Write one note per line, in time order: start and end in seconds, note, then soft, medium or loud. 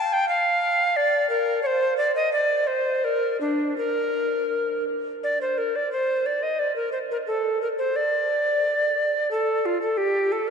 0.00 0.14 A5 loud
0.13 0.28 G5 medium
0.29 0.98 F5 loud
0.96 1.29 D5 loud
1.30 1.62 A#4 medium
1.63 1.96 C5 medium
1.63 1.67 C#5 medium
1.98 2.14 D5 medium
2.16 2.32 D#5 medium
2.33 2.69 D5 medium
2.67 3.06 C5 medium
3.04 3.40 A#4 medium
3.41 3.77 D4 medium
3.78 4.85 A#4 medium
5.23 5.39 D5 medium
5.41 5.59 C5 medium
5.58 5.77 A#4 medium
5.76 5.91 D5 medium
5.92 6.28 C5 medium
6.26 6.44 D5 medium
6.43 6.61 D#5 medium
6.59 6.75 D5 medium
6.76 6.92 A#4 medium
6.92 6.98 C5 medium
7.11 7.17 A#4 medium
7.27 7.61 A4 medium
7.62 7.68 A#4 medium
7.78 7.98 C5 medium
7.96 9.30 D5 medium
9.31 9.67 A4 medium
9.66 9.81 F4 medium
9.82 9.99 A4 medium
9.97 10.34 G4 medium
10.32 10.49 A4 medium